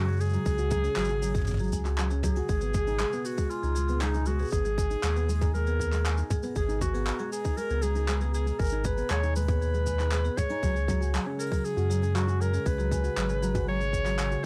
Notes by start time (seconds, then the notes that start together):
Already playing: F#2 C#3 G#3 F#4
0.01 open hi-hat
0.04 C#4 G#4, open hi-hat
0.08 cabasa
0.12 cabasa
0.17 G#4, open hi-hat, cabasa
0.21 cabasa
0.25 cabasa
0.29 F#3 G#4, cabasa
0.33 open hi-hat, cabasa
0.46 C#2 G#5, kick, open hi-hat, cabasa
0.58 F#4 G#4, cabasa
0.71 F#3 G#4, kick, mid tom, cabasa
0.84 C#4 G#4, open hi-hat, cabasa
0.96 G#1 F#3 G#4, clap, open hi-hat, cabasa
1.00 cabasa
1.05 cabasa
1.09 F#4 G#5, cabasa
1.22 F#3 G#4, open hi-hat, cabasa
1.28 open hi-hat
1.34 C#4 G#4, kick, mid tom, open hi-hat, cabasa
1.38 mid tom
1.41 mid tom
1.44 G#4, mid tom, open hi-hat, cabasa
1.47 mid tom
1.51 mid tom
1.54 mid tom
1.57 F#3 G#4, mid tom, cabasa
1.63 cabasa
1.68 cabasa
1.72 C#2 G#5, kick, cabasa
1.85 F#4 G#4, clap, open hi-hat, cabasa
1.98 F#3 G#4, clap, cabasa
2.10 C#4 G#4, cabasa
2.23 F#3 G#4, kick, mid tom, cabasa
2.36 F#4 G#5, open hi-hat, cabasa
2.49 G#1 B2 G#3 G#4, kick, open hi-hat, cabasa
2.61 B3 G#4, cabasa
2.74 G#3 G#4, kick, mid tom, cabasa
2.87 D#4 G#5, open hi-hat, cabasa
2.99 G#3 G#4, clap, open hi-hat, cabasa
3.12 B3 G#4, cabasa
3.24 F#4 G#4, open hi-hat, cabasa
3.31 open hi-hat
3.37 G#3 G#4, kick, open hi-hat, cabasa
3.50 F4 G#5, open hi-hat, cabasa
3.63 C#2 D#4 G#4, cabasa
3.75 G#3 G#4, cabasa
3.88 B3 G#4, open hi-hat, cabasa
4.01 G#3 D#4 G#4, clap, open hi-hat, cabasa
4.14 D#4 G#5, cabasa
4.26 G#3 F#4 G#4, open hi-hat, cabasa
4.39 B3 G#4, open hi-hat, cabasa
4.42 cabasa
4.45 cabasa
4.48 cabasa
4.50 G#1 G#4, kick, open hi-hat, cabasa
4.53 cabasa
4.65 G#3 G#4, cabasa
4.78 G#5, kick, cabasa
4.90 D#4 G#4, open hi-hat, cabasa
5.03 D#2 G#3 G#4, clap, open hi-hat, cabasa
5.16 B3 G#4, cabasa
5.28 G#3 G#4, open hi-hat, cabasa
5.35 open hi-hat
5.41 D#4 G#5, kick, mid tom, open hi-hat, cabasa
5.54 G#3 G#4 A#4, open hi-hat, cabasa
5.67 B3 G#4, cabasa
5.80 G#4, kick, cabasa
5.92 G#3 G#4, clap, open hi-hat, cabasa
6.05 G#5, clap, open hi-hat, cabasa
6.17 D#4 G#4, cabasa
6.30 G#3 G#4, kick, mid tom, open hi-hat, cabasa
6.43 B3 G#4, open hi-hat, cabasa
6.55 G#1 G#3 G#4 A#5, kick, open hi-hat, cabasa
6.68 D#4 G#5, cabasa
6.81 G#3 F#4 G#4, kick, mid tom, cabasa
6.94 B3 G#4, open hi-hat, cabasa
7.07 clap, open hi-hat, cabasa
7.19 G#3 G#4, cabasa
7.32 G#4 G#5, open hi-hat, cabasa
7.39 open hi-hat
7.45 D#4 G#4, kick, open hi-hat, cabasa
7.57 G#3 G#4 A#4, open hi-hat, cabasa
7.70 C#2 B3 G#4, cabasa
7.82 G#3 G#4, cabasa
7.95 D#4 G#5, open hi-hat, cabasa
8.08 G#3 G#4, clap, open hi-hat, cabasa
8.21 B3 G#4, cabasa
8.34 G#4, open hi-hat, cabasa
8.46 G#3 G#4, open hi-hat, cabasa
8.59 G#1 A#4 G#5, kick, open hi-hat, cabasa
8.62 cabasa
8.64 cabasa
8.66 cabasa
8.69 cabasa
8.72 D#4 G#4, cabasa
8.84 G#3 G#4 B4, kick, mid tom, cabasa
8.97 B3 G#4, open hi-hat, cabasa
9.10 D#2 G#3 G#4 C#5, clap, open hi-hat, cabasa
9.23 D#4 G#5, cabasa
9.35 G#3 G#4 B4, open hi-hat, cabasa
9.42 open hi-hat
9.48 B3 G#4, kick, mid tom, cabasa
9.61 G#4, open hi-hat, cabasa
9.74 G#3 G#4, cabasa
9.86 G#5, kick, cabasa
9.99 D#4 G#4, clap, open hi-hat, cabasa
10.11 G#3 G#4, clap, open hi-hat, cabasa
10.25 B3 G#4, cabasa
10.37 G#3 G#4 C#5, kick, mid tom, open hi-hat, cabasa
10.50 D#4 G#5, open hi-hat, cabasa
10.62 C#2 C#3 F#3 G#3 G#4, kick, open hi-hat, cabasa
10.74 C#4 G#4, cabasa
10.87 F#3 G#4, kick, mid tom, cabasa
11.01 F#4 G#5, open hi-hat, cabasa
11.13 F#3 G#4, clap, open hi-hat, cabasa
11.26 C#4 G#4
11.39 G#4 A#4, open hi-hat, cabasa
11.47 open hi-hat
11.52 F#3 G#4, kick, open hi-hat, cabasa
11.64 G#4 G#5, open hi-hat, cabasa
11.77 F#2 F#4 G#4, cabasa
11.90 F#3 G#4, cabasa
12.02 C#4 G#4, open hi-hat, cabasa
12.15 F#3 F#4 G#4, clap, open hi-hat, cabasa
12.28 F#4 G#5, cabasa
12.40 F#3 G#4 A#4, open hi-hat, cabasa
12.53 C#4 G#4, open hi-hat, cabasa
12.66 C#2 G#4 B4, kick, open hi-hat, cabasa
12.78 F#3 G#4, cabasa
12.91 G#5, kick, cabasa
13.04 F#4 G#4, open hi-hat, cabasa
13.17 G#1 F#3 G#4, clap, open hi-hat, cabasa
13.29 C#4 G#4, cabasa
13.42 F#3 G#4, open hi-hat, cabasa
13.55 F#4 G#5, kick, mid tom, open hi-hat, cabasa
13.67 F#3 G#4 C#5, open hi-hat
13.80 C#4 G#4, cabasa
13.93 G#4, kick, cabasa
14.05 F#3 G#4, clap, open hi-hat, cabasa
14.18 G#5, clap, open hi-hat, cabasa
14.31 F#4 G#4, cabasa